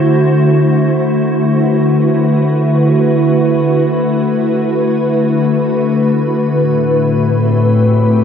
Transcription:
0.00 6.50 D3 medium
0.00 8.24 A3 medium
0.00 7.48 E4 medium
0.00 6.52 F#4 medium
0.00 1.63 C5 medium
1.32 8.24 B4 medium
6.52 8.24 A2 medium
6.93 8.24 C4 medium
7.16 8.24 G4 medium

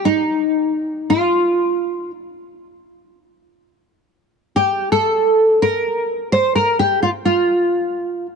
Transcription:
0.05 1.13 D#4 medium
1.10 2.10 F4 medium
4.56 4.89 G4 medium
4.92 5.62 A4 medium
5.62 6.32 A#4 medium
6.32 6.55 C5 loud
6.55 6.77 A#4 medium
6.79 7.02 G4 medium
7.03 7.09 F4 medium
7.25 8.26 F4 medium

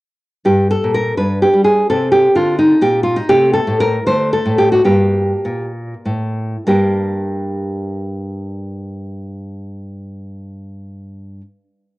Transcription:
0.45 0.74 G2 soft
0.45 1.14 D4 soft
0.45 0.69 G4 medium
0.71 0.93 A4 medium
0.84 1.12 A#2 soft
0.94 1.17 A#4 medium
1.17 1.46 G2 soft
1.17 1.85 D4 soft
1.17 1.40 B4 medium
1.42 1.64 G4 medium
1.53 1.82 G3 soft
1.64 1.87 G#4 medium
1.90 2.27 C3 medium
1.90 3.26 C4 soft
1.90 2.11 A4 medium
2.11 2.34 G4 medium
2.35 2.73 D3 medium
2.35 2.58 F4 medium
2.58 2.81 D#4 medium
2.81 3.20 A#2 medium
2.81 3.03 G4 medium
3.03 3.16 F4 medium
3.16 3.29 D#4 medium
3.29 3.59 C3 medium
3.29 4.01 A3 soft
3.29 3.53 G4 loud
3.53 3.78 A4 medium
3.67 3.98 A2 medium
3.80 4.05 A#4 loud
4.06 4.38 D3 medium
4.06 4.84 A3 soft
4.06 4.32 C5 loud
4.33 4.58 A4 medium
4.46 4.79 A2 medium
4.58 4.72 G4 medium
4.72 4.85 F#4 medium
4.84 5.32 G2 medium
4.84 6.62 A#3 soft
4.84 5.70 G4 medium
5.45 5.93 A#2 medium
6.05 6.55 A2 soft
6.67 11.40 G2 medium
6.67 11.41 A#3 medium
6.67 11.41 D4 medium
6.67 11.42 G4 medium
6.67 11.42 A#4 soft

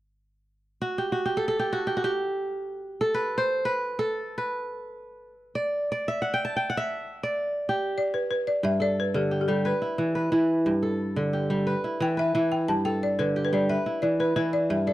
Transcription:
0.82 1.04 F#4 medium
0.98 1.18 G4 medium
1.12 1.31 F#4 medium
1.25 1.59 G4 medium
1.37 1.48 A4 medium
1.48 2.80 A4 medium
1.59 1.79 G4 medium
1.73 1.93 F#4 medium
1.87 2.03 G4 medium
1.97 2.10 F#4 medium
2.04 3.45 G4 medium
3.01 3.99 A4 medium
3.14 3.44 B4 medium
3.38 3.71 C5 medium
3.65 4.37 B4 medium
3.99 5.31 A4 medium
4.38 5.61 B4 medium
5.55 5.91 D5 medium
5.92 7.02 D5 medium
6.08 6.77 E5 medium
6.22 6.40 F#5 medium
6.34 6.56 G5 medium
6.45 7.32 A5 medium
6.56 6.76 G5 medium
6.70 7.66 F#5 medium
6.77 7.81 E5 medium
7.23 8.34 D5 medium
7.69 9.10 G4 medium
7.98 8.15 D5 medium
8.14 8.29 B4 medium
8.31 8.46 B4 medium
8.47 8.65 D5 medium
8.63 9.71 G2 medium
8.63 8.82 E5 loud
8.80 10.12 A4 medium
8.80 8.89 D5 medium
9.00 9.16 B4 medium
9.14 9.71 D3 medium
9.14 9.40 G4 medium
9.31 10.73 G4 soft
9.41 9.45 G4 medium
9.48 9.71 G3 medium
9.48 9.66 A4 medium
9.65 10.15 B4 medium
9.65 10.29 B4 medium
9.82 10.31 E4 medium
9.98 10.31 E3 medium
10.15 11.38 B4 medium
10.32 10.72 E3 medium
10.32 11.84 E4 medium
10.66 11.73 G2 medium
10.82 12.14 A4 medium
11.16 11.73 D3 medium
11.33 12.74 G4 medium
11.50 11.73 G3 medium
11.67 12.17 B4 medium
11.84 12.34 E4 medium
12.00 12.34 E3 medium
12.00 12.19 G5 medium
12.17 13.40 B4 medium
12.17 12.34 E5 medium
12.35 12.74 E3 medium
12.35 13.86 E4 medium
12.35 12.53 E5 medium
12.52 12.68 G5 medium
12.68 13.75 G2 medium
12.68 12.76 A5 medium
12.85 14.17 A4 medium
12.85 13.03 G5 medium
13.03 13.19 D5 medium
13.19 13.75 D3 medium
13.19 13.43 B4 medium
13.36 14.77 G4 medium
13.45 13.53 B4 medium
13.53 13.75 G3 medium
13.53 13.71 D5 medium
13.70 14.19 B4 medium
13.70 14.04 E5 medium
13.86 14.36 E4 medium
14.02 14.35 E3 medium
14.02 14.20 D5 medium
14.20 14.93 B4 medium
14.20 14.35 B4 medium
14.36 14.76 E3 medium
14.36 14.93 E4 medium
14.36 14.54 B4 medium
14.53 14.61 D5 medium
14.70 14.93 G2 medium
14.70 14.86 E5 medium
14.87 14.93 A4 medium
14.87 14.93 D5 medium

